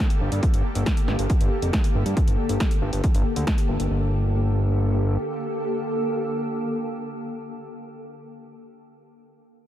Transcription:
0.10 closed hi-hat
0.21 G1
0.32 G2, closed hi-hat
0.43 kick, closed hi-hat
0.54 G1, closed hi-hat
0.75 G1, closed hi-hat
0.86 kick, snare, closed hi-hat
0.97 closed hi-hat
1.08 G1, snare
1.19 G1, closed hi-hat
1.30 kick, closed hi-hat
1.41 G1, closed hi-hat
1.62 F1, closed hi-hat
1.73 kick, snare, closed hi-hat
1.84 closed hi-hat
1.95 G1
2.06 G2, closed hi-hat
2.17 kick, closed hi-hat
2.28 G1, closed hi-hat
2.49 G1, closed hi-hat
2.60 kick, snare, closed hi-hat
2.71 closed hi-hat
2.82 G1
2.93 G1, closed hi-hat
3.04 kick, closed hi-hat
3.14 G1, closed hi-hat
3.36 D2, closed hi-hat
3.47 kick, snare, closed hi-hat
3.58 closed hi-hat
3.69 G1
3.80 G1, closed hi-hat
3.91 G1 D3 A#3 G4 A4

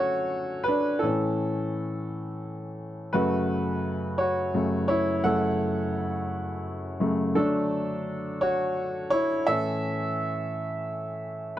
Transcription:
Already playing: D3 F#3 A3 C#4 F#4 A4 C#5
0.64 B4
0.68 D4
0.99 A2 E3 C#4 A4
3.13 F#2 C#3 A3 F#4 B4
4.18 F#4 C#5
4.54 F#2 C#3 A3
4.88 E4 C#5
5.24 F#2 C#3 A3 A4 F#5
7.00 F#2 C#3 A3
7.35 D3 F#3 A3 D4 A4
8.41 F#4 C#5
9.10 E4 C#5
9.47 A2 E3 C#4 A4 E5

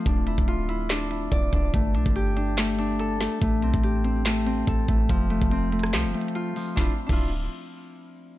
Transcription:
Already playing: F3 A3 C4 F4 A4
0.06 D1 D4, kick, closed hi-hat
0.27 F1 E4, closed hi-hat
0.38 D1, kick
0.48 F4, closed hi-hat
0.69 E4, closed hi-hat
0.90 D4, snare, clap, closed hi-hat
1.11 E4, closed hi-hat
1.32 D1 D5, kick, closed hi-hat
1.53 D1 D4, kick, closed hi-hat
1.74 G1 A3, kick, closed hi-hat
1.95 B1 D4, closed hi-hat
2.06 G1, kick
2.16 G4, closed hi-hat
2.37 D4, closed hi-hat
2.58 A3, snare, clap, closed hi-hat
2.79 D4, closed hi-hat
3.00 A4, closed hi-hat
3.21 A3, snare, open hi-hat
3.42 A1 A3, kick, closed hi-hat
3.62 B1 C4, closed hi-hat
3.74 A1, kick
3.84 G4, closed hi-hat
4.05 C4, closed hi-hat
4.25 A3, snare, clap, closed hi-hat
4.46 C4, closed hi-hat
4.67 A1 A4, kick, closed hi-hat
4.88 A1 A3, kick, closed hi-hat
5.09 F1 F3, kick, closed hi-hat
5.30 A3, closed hi-hat
5.42 F1, kick
5.51 C4, closed hi-hat
5.72 A3, closed hi-hat
5.79 closed hi-hat
5.83 cross-stick, closed hi-hat
5.93 C2 F3, snare, clap, closed hi-hat
6.04 F1
6.14 A3, closed hi-hat
6.21 closed hi-hat
6.28 closed hi-hat
6.35 F4, closed hi-hat
6.56 F3, open hi-hat
6.76 D1 D4 E4 F4, kick, snare
7.06 D1 D4 E4, kick, crash
7.12 F4

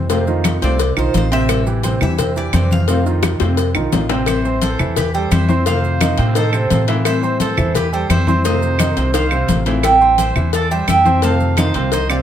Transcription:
Already playing: F2 C5
0.09 C3 D#3 A3 C4 F4 C5, cowbell, high conga, maracas
0.27 D#3 D#4 F4, high conga, maracas
0.44 cowbell, high conga, claves, maracas
0.62 C2 C3 D#3 A3 C4 F4 C5 D5, cowbell, maracas
0.79 muted nylon-string guitar stroke, cowbell, high conga, maracas
0.97 B1 D#3 D#4 F4 C5, high conga, claves, maracas
1.13 A1 D#3 A3 C4 F4 C5, cowbell, high conga, maracas
1.31 C3 C4 C5 E5, cowbell, maracas
1.48 E3 G3 C4 E4, cowbell, high conga, claves, maracas
1.67 E3 E4 G4, high conga, maracas
1.83 C3 C4 C5, cowbell, high conga, maracas
2.01 E2 E3 G3 C4 E4 G4 E5, high conga, low conga, claves, maracas
2.18 C3 C4 C5, muted nylon-string guitar stroke, cowbell, high conga, low conga, maracas
2.36 E3 E4 G4 D5, high conga, maracas
2.53 F2 C3 E3 G3 C4 E4 C5 D5, cowbell, high conga, claves, maracas
2.71 F5, high conga, maracas
2.88 C3 D#3 A3 C4 F4 C5, cowbell, maracas
3.06 D#3 D#4 F4, high conga, maracas
3.23 cowbell, high bongo, high conga, claves, maracas
3.40 F2 C3 D#3 A3 C4 F4 C5, cowbell, high bongo, maracas
3.57 muted nylon-string guitar stroke, cowbell, high conga, maracas
3.75 B1 D#3 D#4 F4, low bongo, high conga, claves, maracas
3.92 A1 D#3 A3 C4 F4, cowbell, low bongo, high conga, maracas
4.09 C3 C4 C5, cowbell, low bongo, maracas
4.26 E3 G3 C4 E4 C5 E5, cowbell, high conga, claves, maracas
4.45 C4 C5 C6, high conga, maracas
4.62 A4 C5, cowbell, high conga, maracas
4.79 E2 E3 E4 E5, high conga, low conga, claves, maracas
4.96 G4 B4, muted nylon-string guitar stroke, cowbell, high conga, low conga, maracas
5.14 G3 G4 A4 C5 G5, high conga, maracas
5.31 F2 E3 G3 C4 E4 C5 E5, cowbell, high conga, claves, maracas
5.48 G3 C4 E4 C5 C6, high conga, maracas
5.65 C3 D#3 A3 C4 F4 C5 F5, cowbell, high conga, maracas
5.84 high conga, maracas
6.01 D#3 D#4 D#5, cowbell, high conga, claves, maracas
6.18 A2 C3 C4 C5, cowbell, maracas
6.35 D#3 D#4 A4 C5 D#5, muted nylon-string guitar stroke, cowbell, high conga, maracas
6.53 C3 C4 C5, high conga, claves, maracas
6.69 A2 D#3 A3 C4 F4, cowbell, high conga, maracas
6.87 D#3 E3 A3 C4 E4 F4 E5, cowbell, maracas
7.05 E3 G3 C4 E4 C5 E5, cowbell, high conga, claves, maracas
7.23 C4 C5 C6, high conga, maracas
7.40 A4 C5, cowbell, high conga, maracas
7.57 E2 E3 E4 E5, high conga, low conga, claves, maracas
7.75 G4 B4, muted nylon-string guitar stroke, cowbell, high conga, low conga, maracas
7.92 G3 G4 A4 C5 G5, high conga, maracas
8.09 F2 E3 G3 C4 E4 C5 E5, cowbell, high conga, claves, maracas
8.27 G3 C4 E4 C5 C6, high conga, maracas
8.44 C3 D#3 A3 C4 F4 C5 D#5, cowbell, high conga, maracas
8.62 high conga, maracas
8.79 D#3 D#4 D#5, cowbell, high conga, claves, maracas
8.96 C2 C3 C4 C5, cowbell, maracas
9.13 D#3 D#4 C5 D#5 F5, muted nylon-string guitar stroke, cowbell, high conga, maracas
9.31 C3 C4 C5, high conga, claves, maracas
9.48 A1 D#3 A3 C4 F4, cowbell, high conga, maracas
9.66 D#3 E3 A3 C4 E4 F4 E5, cowbell, maracas
9.82 E3 G3 C4 E4 E5 G5, cowbell, high conga, claves, maracas
10.01 C4 C5 C6, high conga, maracas
10.18 C5 E5, cowbell, high conga, maracas
10.36 E2 E3 E4 E5, high conga, low conga, claves, maracas
10.53 A4 D5, muted nylon-string guitar stroke, cowbell, high conga, maracas
10.71 G3 G4 C5 E5 G5, high conga, maracas
10.87 F2 E3 G3 C4 E4 E5 G5, cowbell, high conga, claves, maracas
11.05 G3 C4 E4 C5 C6, high conga, maracas
11.22 C3 D#3 A3 C4 F4 C5 F5 A5, cowbell, high conga, maracas
11.40 high conga, maracas
11.57 D#3 D#4 C5 D#5 F5, cowbell, high conga, claves, maracas
11.74 C2 C3 C4 C5, cowbell, maracas
11.92 D#3 D#4 C5 D#5, muted nylon-string guitar stroke, cowbell, high conga, maracas
12.09 C3 C4 C5 D5 F5, high conga, claves, maracas

